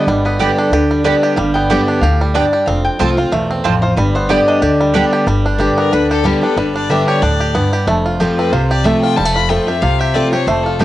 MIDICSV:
0, 0, Header, 1, 7, 480
1, 0, Start_track
1, 0, Tempo, 325027
1, 112, Time_signature, 4, 2, 24, 8
1, 16017, End_track
2, 0, Start_track
2, 0, Title_t, "Resonator guitar played with a steel bar"
2, 0, Program_c, 0, 25
2, 106, Note_on_c, 0, 74, 90
2, 364, Note_off_c, 0, 74, 0
2, 369, Note_on_c, 0, 71, 97
2, 581, Note_on_c, 0, 67, 78
2, 582, Note_off_c, 0, 71, 0
2, 841, Note_off_c, 0, 67, 0
2, 861, Note_on_c, 0, 69, 89
2, 1067, Note_off_c, 0, 69, 0
2, 1075, Note_on_c, 0, 71, 96
2, 1231, Note_off_c, 0, 71, 0
2, 1550, Note_on_c, 0, 74, 88
2, 1996, Note_off_c, 0, 74, 0
2, 2011, Note_on_c, 0, 77, 91
2, 2268, Note_off_c, 0, 77, 0
2, 2274, Note_on_c, 0, 79, 116
2, 2929, Note_off_c, 0, 79, 0
2, 2971, Note_on_c, 0, 77, 90
2, 3235, Note_off_c, 0, 77, 0
2, 3457, Note_on_c, 0, 74, 72
2, 3908, Note_off_c, 0, 74, 0
2, 3928, Note_on_c, 0, 77, 84
2, 4193, Note_off_c, 0, 77, 0
2, 4202, Note_on_c, 0, 79, 113
2, 4853, Note_off_c, 0, 79, 0
2, 4895, Note_on_c, 0, 77, 89
2, 5057, Note_off_c, 0, 77, 0
2, 5638, Note_on_c, 0, 72, 101
2, 5849, Note_off_c, 0, 72, 0
2, 5855, Note_on_c, 0, 71, 82
2, 6116, Note_off_c, 0, 71, 0
2, 6127, Note_on_c, 0, 72, 95
2, 6338, Note_off_c, 0, 72, 0
2, 6360, Note_on_c, 0, 74, 87
2, 6609, Note_off_c, 0, 74, 0
2, 6619, Note_on_c, 0, 75, 124
2, 6822, Note_off_c, 0, 75, 0
2, 6828, Note_on_c, 0, 74, 82
2, 7519, Note_off_c, 0, 74, 0
2, 16017, End_track
3, 0, Start_track
3, 0, Title_t, "Fiddle"
3, 0, Program_c, 1, 110
3, 8530, Note_on_c, 1, 70, 85
3, 8753, Note_on_c, 1, 71, 97
3, 8775, Note_off_c, 1, 70, 0
3, 9014, Note_off_c, 1, 71, 0
3, 9026, Note_on_c, 1, 69, 96
3, 9242, Note_on_c, 1, 67, 89
3, 9264, Note_off_c, 1, 69, 0
3, 9483, Note_off_c, 1, 67, 0
3, 9492, Note_on_c, 1, 69, 90
3, 9711, Note_on_c, 1, 71, 83
3, 9733, Note_off_c, 1, 69, 0
3, 9966, Note_off_c, 1, 71, 0
3, 9975, Note_on_c, 1, 74, 86
3, 10193, Note_on_c, 1, 76, 85
3, 10215, Note_off_c, 1, 74, 0
3, 10451, Note_off_c, 1, 76, 0
3, 10460, Note_on_c, 1, 73, 91
3, 10669, Note_on_c, 1, 74, 83
3, 10691, Note_off_c, 1, 73, 0
3, 11630, Note_off_c, 1, 74, 0
3, 12375, Note_on_c, 1, 71, 88
3, 12587, Note_on_c, 1, 72, 85
3, 12609, Note_off_c, 1, 71, 0
3, 12834, Note_off_c, 1, 72, 0
3, 12842, Note_on_c, 1, 74, 93
3, 13057, Note_on_c, 1, 76, 87
3, 13080, Note_off_c, 1, 74, 0
3, 13296, Note_off_c, 1, 76, 0
3, 13305, Note_on_c, 1, 79, 103
3, 13531, Note_on_c, 1, 81, 103
3, 13554, Note_off_c, 1, 79, 0
3, 13788, Note_off_c, 1, 81, 0
3, 13797, Note_on_c, 1, 83, 120
3, 14016, Note_on_c, 1, 79, 93
3, 14038, Note_off_c, 1, 83, 0
3, 14277, Note_on_c, 1, 76, 94
3, 14299, Note_off_c, 1, 79, 0
3, 14492, Note_on_c, 1, 77, 101
3, 14514, Note_off_c, 1, 76, 0
3, 14751, Note_on_c, 1, 76, 94
3, 14773, Note_off_c, 1, 77, 0
3, 14973, Note_on_c, 1, 74, 87
3, 14995, Note_off_c, 1, 76, 0
3, 15227, Note_off_c, 1, 74, 0
3, 15236, Note_on_c, 1, 73, 95
3, 15451, Note_on_c, 1, 72, 90
3, 15473, Note_off_c, 1, 73, 0
3, 15700, Note_on_c, 1, 69, 89
3, 15722, Note_off_c, 1, 72, 0
3, 15943, Note_on_c, 1, 67, 76
3, 15965, Note_off_c, 1, 69, 0
3, 16017, Note_off_c, 1, 67, 0
3, 16017, End_track
4, 0, Start_track
4, 0, Title_t, "Mandolin"
4, 0, Program_c, 2, 25
4, 584, Note_on_c, 2, 59, 87
4, 589, Note_on_c, 2, 67, 85
4, 595, Note_on_c, 2, 74, 98
4, 602, Note_on_c, 2, 79, 90
4, 733, Note_off_c, 2, 59, 0
4, 735, Note_off_c, 2, 67, 0
4, 738, Note_off_c, 2, 74, 0
4, 742, Note_off_c, 2, 79, 0
4, 1542, Note_on_c, 2, 59, 88
4, 1547, Note_on_c, 2, 67, 83
4, 1550, Note_on_c, 2, 74, 97
4, 1560, Note_on_c, 2, 79, 104
4, 1691, Note_off_c, 2, 59, 0
4, 1694, Note_off_c, 2, 67, 0
4, 1695, Note_off_c, 2, 74, 0
4, 1700, Note_off_c, 2, 79, 0
4, 2505, Note_on_c, 2, 59, 85
4, 2507, Note_on_c, 2, 67, 78
4, 2513, Note_on_c, 2, 74, 93
4, 2520, Note_on_c, 2, 79, 80
4, 2652, Note_off_c, 2, 59, 0
4, 2653, Note_off_c, 2, 67, 0
4, 2656, Note_off_c, 2, 74, 0
4, 2660, Note_off_c, 2, 79, 0
4, 3464, Note_on_c, 2, 59, 92
4, 3470, Note_on_c, 2, 67, 96
4, 3476, Note_on_c, 2, 74, 88
4, 3479, Note_on_c, 2, 79, 110
4, 3611, Note_off_c, 2, 59, 0
4, 3614, Note_off_c, 2, 67, 0
4, 3617, Note_off_c, 2, 74, 0
4, 3619, Note_off_c, 2, 79, 0
4, 4417, Note_on_c, 2, 60, 77
4, 4421, Note_on_c, 2, 65, 88
4, 4430, Note_on_c, 2, 72, 84
4, 4430, Note_on_c, 2, 81, 111
4, 4567, Note_off_c, 2, 60, 0
4, 4570, Note_off_c, 2, 65, 0
4, 4574, Note_off_c, 2, 72, 0
4, 4574, Note_off_c, 2, 81, 0
4, 5377, Note_on_c, 2, 60, 86
4, 5381, Note_on_c, 2, 65, 100
4, 5386, Note_on_c, 2, 72, 101
4, 5392, Note_on_c, 2, 81, 104
4, 5527, Note_off_c, 2, 60, 0
4, 5530, Note_off_c, 2, 65, 0
4, 5532, Note_off_c, 2, 72, 0
4, 5535, Note_off_c, 2, 81, 0
4, 6336, Note_on_c, 2, 59, 81
4, 6344, Note_on_c, 2, 67, 93
4, 6346, Note_on_c, 2, 74, 90
4, 6349, Note_on_c, 2, 79, 93
4, 6487, Note_off_c, 2, 59, 0
4, 6491, Note_off_c, 2, 67, 0
4, 6492, Note_off_c, 2, 74, 0
4, 6493, Note_off_c, 2, 79, 0
4, 7291, Note_on_c, 2, 59, 91
4, 7295, Note_on_c, 2, 67, 92
4, 7304, Note_on_c, 2, 74, 94
4, 7307, Note_on_c, 2, 79, 99
4, 7444, Note_off_c, 2, 59, 0
4, 7446, Note_off_c, 2, 67, 0
4, 7451, Note_off_c, 2, 74, 0
4, 7452, Note_off_c, 2, 79, 0
4, 16017, End_track
5, 0, Start_track
5, 0, Title_t, "Five-string banjo"
5, 0, Program_c, 3, 105
5, 0, Note_on_c, 3, 59, 55
5, 0, Note_on_c, 3, 62, 64
5, 117, Note_on_c, 3, 55, 74
5, 375, Note_off_c, 3, 59, 0
5, 381, Note_on_c, 3, 59, 61
5, 596, Note_on_c, 3, 67, 53
5, 856, Note_off_c, 3, 62, 0
5, 862, Note_on_c, 3, 62, 63
5, 1030, Note_off_c, 3, 59, 0
5, 1060, Note_off_c, 3, 67, 0
5, 1077, Note_on_c, 3, 67, 66
5, 1334, Note_off_c, 3, 55, 0
5, 1340, Note_on_c, 3, 55, 62
5, 1510, Note_off_c, 3, 62, 0
5, 1550, Note_on_c, 3, 62, 55
5, 1764, Note_off_c, 3, 67, 0
5, 1818, Note_on_c, 3, 67, 61
5, 1989, Note_off_c, 3, 55, 0
5, 2034, Note_on_c, 3, 55, 81
5, 2240, Note_off_c, 3, 62, 0
5, 2296, Note_on_c, 3, 59, 57
5, 2468, Note_off_c, 3, 67, 0
5, 2519, Note_on_c, 3, 67, 62
5, 2722, Note_off_c, 3, 55, 0
5, 2778, Note_on_c, 3, 62, 62
5, 2947, Note_off_c, 3, 59, 0
5, 2977, Note_off_c, 3, 67, 0
5, 2995, Note_on_c, 3, 67, 65
5, 3269, Note_on_c, 3, 55, 63
5, 3427, Note_off_c, 3, 62, 0
5, 3475, Note_on_c, 3, 62, 55
5, 3682, Note_off_c, 3, 67, 0
5, 3737, Note_on_c, 3, 67, 59
5, 3913, Note_off_c, 3, 55, 0
5, 3950, Note_off_c, 3, 67, 0
5, 3951, Note_off_c, 3, 62, 0
5, 3953, Note_on_c, 3, 60, 64
5, 4410, Note_off_c, 3, 60, 0
5, 4427, Note_on_c, 3, 60, 66
5, 4697, Note_on_c, 3, 65, 61
5, 4908, Note_on_c, 3, 57, 68
5, 5118, Note_off_c, 3, 60, 0
5, 5177, Note_on_c, 3, 60, 64
5, 5346, Note_off_c, 3, 65, 0
5, 5392, Note_on_c, 3, 53, 57
5, 5598, Note_off_c, 3, 57, 0
5, 5655, Note_on_c, 3, 65, 60
5, 5827, Note_off_c, 3, 60, 0
5, 5869, Note_off_c, 3, 53, 0
5, 5869, Note_off_c, 3, 65, 0
5, 5878, Note_on_c, 3, 55, 80
5, 6140, Note_on_c, 3, 59, 64
5, 6355, Note_on_c, 3, 67, 65
5, 6563, Note_off_c, 3, 55, 0
5, 6614, Note_on_c, 3, 62, 63
5, 6788, Note_off_c, 3, 59, 0
5, 6807, Note_off_c, 3, 67, 0
5, 6824, Note_on_c, 3, 67, 59
5, 7097, Note_on_c, 3, 55, 64
5, 7265, Note_off_c, 3, 62, 0
5, 7310, Note_on_c, 3, 62, 58
5, 7516, Note_off_c, 3, 67, 0
5, 7572, Note_on_c, 3, 67, 62
5, 7747, Note_off_c, 3, 55, 0
5, 7787, Note_on_c, 3, 55, 82
5, 7788, Note_off_c, 3, 62, 0
5, 7788, Note_off_c, 3, 67, 0
5, 8059, Note_on_c, 3, 62, 64
5, 8267, Note_on_c, 3, 67, 58
5, 8531, Note_on_c, 3, 59, 57
5, 8708, Note_off_c, 3, 62, 0
5, 8751, Note_on_c, 3, 62, 66
5, 8958, Note_off_c, 3, 67, 0
5, 9021, Note_on_c, 3, 67, 63
5, 9184, Note_off_c, 3, 59, 0
5, 9225, Note_off_c, 3, 55, 0
5, 9231, Note_on_c, 3, 55, 67
5, 9440, Note_off_c, 3, 62, 0
5, 9497, Note_on_c, 3, 62, 54
5, 9669, Note_off_c, 3, 67, 0
5, 9693, Note_off_c, 3, 55, 0
5, 9711, Note_on_c, 3, 55, 74
5, 9960, Note_off_c, 3, 62, 0
5, 9978, Note_on_c, 3, 62, 62
5, 10175, Note_off_c, 3, 55, 0
5, 10193, Note_on_c, 3, 55, 56
5, 10454, Note_on_c, 3, 67, 64
5, 10628, Note_off_c, 3, 62, 0
5, 10673, Note_on_c, 3, 62, 68
5, 10882, Note_off_c, 3, 55, 0
5, 10917, Note_off_c, 3, 67, 0
5, 10935, Note_on_c, 3, 67, 60
5, 11146, Note_on_c, 3, 59, 61
5, 11363, Note_off_c, 3, 62, 0
5, 11398, Note_off_c, 3, 67, 0
5, 11415, Note_on_c, 3, 67, 61
5, 11628, Note_off_c, 3, 59, 0
5, 11631, Note_off_c, 3, 67, 0
5, 11632, Note_on_c, 3, 57, 85
5, 11898, Note_on_c, 3, 65, 58
5, 12112, Note_on_c, 3, 67, 56
5, 12386, Note_on_c, 3, 60, 66
5, 12585, Note_off_c, 3, 65, 0
5, 12591, Note_on_c, 3, 65, 61
5, 12803, Note_off_c, 3, 67, 0
5, 12860, Note_on_c, 3, 67, 66
5, 12904, Note_off_c, 3, 57, 0
5, 13079, Note_on_c, 3, 57, 68
5, 13335, Note_off_c, 3, 65, 0
5, 13341, Note_on_c, 3, 65, 58
5, 13511, Note_off_c, 3, 67, 0
5, 13542, Note_off_c, 3, 57, 0
5, 13548, Note_on_c, 3, 55, 85
5, 13664, Note_off_c, 3, 55, 0
5, 13664, Note_on_c, 3, 57, 80
5, 13812, Note_off_c, 3, 65, 0
5, 13818, Note_on_c, 3, 65, 62
5, 14016, Note_off_c, 3, 57, 0
5, 14034, Note_on_c, 3, 57, 57
5, 14298, Note_on_c, 3, 67, 55
5, 14454, Note_off_c, 3, 60, 0
5, 14470, Note_off_c, 3, 65, 0
5, 14513, Note_on_c, 3, 65, 63
5, 14725, Note_off_c, 3, 57, 0
5, 14759, Note_off_c, 3, 67, 0
5, 14777, Note_on_c, 3, 67, 64
5, 14995, Note_on_c, 3, 60, 52
5, 15204, Note_off_c, 3, 65, 0
5, 15234, Note_off_c, 3, 67, 0
5, 15252, Note_on_c, 3, 67, 56
5, 15475, Note_on_c, 3, 57, 85
5, 15686, Note_off_c, 3, 60, 0
5, 15743, Note_on_c, 3, 65, 60
5, 15908, Note_off_c, 3, 67, 0
5, 15958, Note_on_c, 3, 67, 60
5, 16017, Note_off_c, 3, 57, 0
5, 16017, Note_off_c, 3, 65, 0
5, 16017, Note_off_c, 3, 67, 0
5, 16017, End_track
6, 0, Start_track
6, 0, Title_t, "Steel-string acoustic guitar"
6, 0, Program_c, 4, 25
6, 115, Note_on_c, 4, 43, 84
6, 579, Note_on_c, 4, 50, 83
6, 597, Note_on_c, 4, 55, 82
6, 605, Note_on_c, 4, 59, 80
6, 619, Note_on_c, 4, 67, 90
6, 1029, Note_off_c, 4, 43, 0
6, 1043, Note_off_c, 4, 50, 0
6, 1052, Note_off_c, 4, 55, 0
6, 1056, Note_off_c, 4, 59, 0
6, 1063, Note_off_c, 4, 67, 0
6, 1076, Note_on_c, 4, 50, 93
6, 1522, Note_off_c, 4, 50, 0
6, 1539, Note_on_c, 4, 50, 97
6, 1549, Note_on_c, 4, 55, 91
6, 1564, Note_on_c, 4, 59, 92
6, 1569, Note_on_c, 4, 67, 100
6, 2002, Note_off_c, 4, 50, 0
6, 2007, Note_off_c, 4, 55, 0
6, 2015, Note_off_c, 4, 59, 0
6, 2017, Note_off_c, 4, 67, 0
6, 2024, Note_on_c, 4, 43, 91
6, 2510, Note_on_c, 4, 50, 85
6, 2521, Note_on_c, 4, 55, 84
6, 2527, Note_on_c, 4, 59, 98
6, 2539, Note_on_c, 4, 67, 91
6, 2942, Note_off_c, 4, 43, 0
6, 2967, Note_off_c, 4, 50, 0
6, 2973, Note_off_c, 4, 55, 0
6, 2976, Note_off_c, 4, 59, 0
6, 2982, Note_off_c, 4, 67, 0
6, 3001, Note_on_c, 4, 45, 96
6, 3452, Note_off_c, 4, 45, 0
6, 3469, Note_on_c, 4, 43, 93
6, 3927, Note_off_c, 4, 43, 0
6, 3948, Note_on_c, 4, 41, 89
6, 4417, Note_on_c, 4, 53, 87
6, 4430, Note_on_c, 4, 57, 78
6, 4437, Note_on_c, 4, 60, 95
6, 4447, Note_on_c, 4, 65, 109
6, 4663, Note_off_c, 4, 65, 0
6, 4675, Note_off_c, 4, 53, 0
6, 4680, Note_on_c, 4, 65, 61
6, 4682, Note_off_c, 4, 57, 0
6, 4685, Note_off_c, 4, 60, 0
6, 4712, Note_on_c, 4, 60, 57
6, 4864, Note_off_c, 4, 41, 0
6, 4893, Note_off_c, 4, 65, 0
6, 4906, Note_on_c, 4, 40, 96
6, 4909, Note_off_c, 4, 60, 0
6, 5364, Note_off_c, 4, 40, 0
6, 5391, Note_on_c, 4, 41, 95
6, 5847, Note_off_c, 4, 41, 0
6, 5868, Note_on_c, 4, 43, 86
6, 6337, Note_on_c, 4, 50, 84
6, 6352, Note_on_c, 4, 55, 84
6, 6365, Note_on_c, 4, 59, 85
6, 6367, Note_on_c, 4, 67, 96
6, 6784, Note_off_c, 4, 43, 0
6, 6800, Note_off_c, 4, 50, 0
6, 6808, Note_off_c, 4, 55, 0
6, 6814, Note_off_c, 4, 59, 0
6, 6815, Note_off_c, 4, 67, 0
6, 6825, Note_on_c, 4, 50, 92
6, 7285, Note_off_c, 4, 50, 0
6, 7303, Note_on_c, 4, 50, 96
6, 7316, Note_on_c, 4, 55, 98
6, 7323, Note_on_c, 4, 59, 98
6, 7331, Note_on_c, 4, 67, 107
6, 7763, Note_off_c, 4, 50, 0
6, 7770, Note_off_c, 4, 55, 0
6, 7773, Note_off_c, 4, 59, 0
6, 7777, Note_off_c, 4, 67, 0
6, 7795, Note_on_c, 4, 43, 85
6, 8248, Note_on_c, 4, 50, 87
6, 8262, Note_on_c, 4, 55, 75
6, 8270, Note_on_c, 4, 59, 79
6, 8281, Note_on_c, 4, 67, 91
6, 8708, Note_off_c, 4, 43, 0
6, 8716, Note_off_c, 4, 50, 0
6, 8723, Note_off_c, 4, 55, 0
6, 8727, Note_off_c, 4, 59, 0
6, 8733, Note_off_c, 4, 67, 0
6, 8759, Note_on_c, 4, 50, 91
6, 9193, Note_off_c, 4, 50, 0
6, 9211, Note_on_c, 4, 50, 94
6, 9225, Note_on_c, 4, 55, 95
6, 9238, Note_on_c, 4, 59, 93
6, 9241, Note_on_c, 4, 67, 101
6, 9459, Note_off_c, 4, 67, 0
6, 9473, Note_off_c, 4, 50, 0
6, 9476, Note_on_c, 4, 67, 59
6, 9480, Note_off_c, 4, 55, 0
6, 9486, Note_off_c, 4, 59, 0
6, 9504, Note_on_c, 4, 59, 43
6, 9692, Note_off_c, 4, 67, 0
6, 9705, Note_off_c, 4, 59, 0
6, 9709, Note_on_c, 4, 43, 80
6, 10187, Note_on_c, 4, 50, 89
6, 10198, Note_on_c, 4, 55, 78
6, 10210, Note_on_c, 4, 59, 82
6, 10212, Note_on_c, 4, 67, 93
6, 10626, Note_off_c, 4, 43, 0
6, 10647, Note_off_c, 4, 50, 0
6, 10652, Note_off_c, 4, 55, 0
6, 10658, Note_off_c, 4, 59, 0
6, 10659, Note_off_c, 4, 67, 0
6, 10664, Note_on_c, 4, 45, 85
6, 11125, Note_off_c, 4, 45, 0
6, 11149, Note_on_c, 4, 43, 89
6, 11608, Note_off_c, 4, 43, 0
6, 11630, Note_on_c, 4, 41, 93
6, 12110, Note_on_c, 4, 53, 79
6, 12119, Note_on_c, 4, 57, 83
6, 12130, Note_on_c, 4, 60, 95
6, 12145, Note_on_c, 4, 65, 101
6, 12547, Note_off_c, 4, 41, 0
6, 12569, Note_off_c, 4, 53, 0
6, 12573, Note_off_c, 4, 57, 0
6, 12579, Note_off_c, 4, 60, 0
6, 12586, Note_off_c, 4, 65, 0
6, 12594, Note_on_c, 4, 48, 88
6, 13057, Note_on_c, 4, 53, 94
6, 13073, Note_on_c, 4, 57, 90
6, 13083, Note_on_c, 4, 60, 96
6, 13091, Note_on_c, 4, 65, 98
6, 13510, Note_off_c, 4, 48, 0
6, 13523, Note_off_c, 4, 53, 0
6, 13531, Note_off_c, 4, 57, 0
6, 13536, Note_off_c, 4, 60, 0
6, 13540, Note_off_c, 4, 65, 0
6, 13542, Note_on_c, 4, 41, 84
6, 14018, Note_on_c, 4, 53, 80
6, 14029, Note_on_c, 4, 57, 88
6, 14041, Note_on_c, 4, 60, 87
6, 14051, Note_on_c, 4, 65, 83
6, 14263, Note_off_c, 4, 65, 0
6, 14278, Note_off_c, 4, 53, 0
6, 14281, Note_on_c, 4, 65, 58
6, 14284, Note_off_c, 4, 57, 0
6, 14290, Note_off_c, 4, 60, 0
6, 14313, Note_on_c, 4, 60, 52
6, 14464, Note_off_c, 4, 41, 0
6, 14496, Note_off_c, 4, 65, 0
6, 14502, Note_on_c, 4, 48, 97
6, 14512, Note_off_c, 4, 60, 0
6, 14978, Note_on_c, 4, 53, 84
6, 14989, Note_on_c, 4, 57, 86
6, 15000, Note_on_c, 4, 60, 108
6, 15009, Note_on_c, 4, 65, 104
6, 15220, Note_off_c, 4, 65, 0
6, 15238, Note_on_c, 4, 65, 55
6, 15239, Note_off_c, 4, 53, 0
6, 15244, Note_off_c, 4, 57, 0
6, 15250, Note_off_c, 4, 60, 0
6, 15270, Note_on_c, 4, 60, 50
6, 15425, Note_off_c, 4, 48, 0
6, 15455, Note_off_c, 4, 65, 0
6, 15466, Note_on_c, 4, 41, 85
6, 15471, Note_off_c, 4, 60, 0
6, 15938, Note_on_c, 4, 53, 82
6, 15952, Note_on_c, 4, 57, 90
6, 15968, Note_on_c, 4, 60, 87
6, 16017, Note_off_c, 4, 41, 0
6, 16017, Note_off_c, 4, 53, 0
6, 16017, Note_off_c, 4, 57, 0
6, 16017, Note_off_c, 4, 60, 0
6, 16017, End_track
7, 0, Start_track
7, 0, Title_t, "Upright bass"
7, 0, Program_c, 5, 32
7, 104, Note_on_c, 5, 31, 85
7, 685, Note_off_c, 5, 31, 0
7, 1052, Note_on_c, 5, 38, 84
7, 1636, Note_off_c, 5, 38, 0
7, 2023, Note_on_c, 5, 31, 95
7, 2604, Note_off_c, 5, 31, 0
7, 2976, Note_on_c, 5, 38, 89
7, 3559, Note_off_c, 5, 38, 0
7, 3945, Note_on_c, 5, 29, 98
7, 4236, Note_off_c, 5, 29, 0
7, 4423, Note_on_c, 5, 36, 86
7, 4833, Note_off_c, 5, 36, 0
7, 4909, Note_on_c, 5, 35, 81
7, 5316, Note_off_c, 5, 35, 0
7, 5386, Note_on_c, 5, 33, 82
7, 5794, Note_off_c, 5, 33, 0
7, 5865, Note_on_c, 5, 31, 101
7, 6445, Note_off_c, 5, 31, 0
7, 6820, Note_on_c, 5, 38, 84
7, 7402, Note_off_c, 5, 38, 0
7, 7777, Note_on_c, 5, 31, 101
7, 8360, Note_off_c, 5, 31, 0
7, 8751, Note_on_c, 5, 38, 81
7, 9330, Note_off_c, 5, 38, 0
7, 9697, Note_on_c, 5, 31, 86
7, 10280, Note_off_c, 5, 31, 0
7, 10663, Note_on_c, 5, 38, 77
7, 11245, Note_off_c, 5, 38, 0
7, 11623, Note_on_c, 5, 29, 89
7, 12205, Note_off_c, 5, 29, 0
7, 12589, Note_on_c, 5, 36, 81
7, 13170, Note_off_c, 5, 36, 0
7, 13553, Note_on_c, 5, 29, 97
7, 14133, Note_off_c, 5, 29, 0
7, 14500, Note_on_c, 5, 36, 79
7, 15084, Note_off_c, 5, 36, 0
7, 15462, Note_on_c, 5, 29, 95
7, 16017, Note_off_c, 5, 29, 0
7, 16017, End_track
0, 0, End_of_file